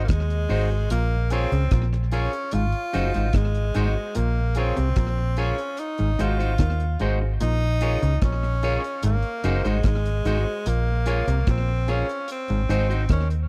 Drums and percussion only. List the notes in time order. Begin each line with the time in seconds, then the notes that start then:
0.08 kick, cross-stick, closed hi-hat
0.30 closed hi-hat
0.50 open hi-hat
0.90 closed hi-hat
1.30 closed hi-hat
1.52 closed hi-hat
1.71 kick, cross-stick, closed hi-hat
1.93 cross-stick
2.11 closed hi-hat
2.33 closed hi-hat
2.51 closed hi-hat
2.72 closed hi-hat
2.93 closed hi-hat
3.14 closed hi-hat
3.33 kick, cross-stick, closed hi-hat
3.55 closed hi-hat
3.74 cross-stick, closed hi-hat
4.15 closed hi-hat
4.55 closed hi-hat
4.77 closed hi-hat
4.96 kick, cross-stick, closed hi-hat
5.37 closed hi-hat
5.58 closed hi-hat
5.77 closed hi-hat
5.98 closed hi-hat
6.19 closed hi-hat
6.40 closed hi-hat
6.58 kick, cross-stick, closed hi-hat
6.80 closed hi-hat
7.00 closed hi-hat
7.40 closed hi-hat
7.81 closed hi-hat
8.03 closed hi-hat
8.22 kick, cross-stick, closed hi-hat
8.43 cross-stick
8.63 closed hi-hat
8.84 closed hi-hat
9.03 closed hi-hat
9.23 closed hi-hat
9.44 closed hi-hat
9.65 closed hi-hat
9.83 kick, cross-stick, closed hi-hat
10.06 closed hi-hat
10.25 cross-stick, closed hi-hat
10.66 closed hi-hat
11.06 closed hi-hat
11.28 closed hi-hat
11.47 kick, cross-stick, closed hi-hat
11.88 closed hi-hat
12.09 closed hi-hat
12.28 closed hi-hat
12.48 closed hi-hat
12.70 closed hi-hat
12.91 closed hi-hat
13.09 kick, cross-stick, closed hi-hat
13.30 closed hi-hat